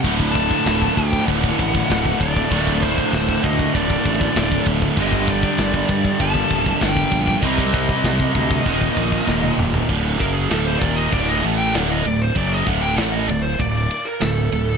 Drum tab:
CC |x---------------|----------------|----------------|----------------|
RD |--x-x-x-x-x-x-x-|x-x-x-x-x-x-x-x-|x-x-x-x-x-x-x-x-|x-x-x-x-x-x-----|
SD |----o-------o---|----o-------o---|----o-------o---|----o-------o---|
T1 |----------------|----------------|----------------|-------------o--|
T2 |----------------|----------------|----------------|--------------o-|
FT |----------------|----------------|----------------|---------------o|
BD |oooooooooooooooo|oooooooooooooooo|oooooooooooooooo|ooooooooooooo---|

CC |----------------|----------------|
RD |x-x-x-x-x-x-x-x-|x-x-x-x-x-x-x-x-|
SD |----o-------o---|----o-------o---|
T1 |----------------|----------------|
T2 |----------------|----------------|
FT |----------------|----------------|
BD |o-o---o-o-------|o-o-----o-------|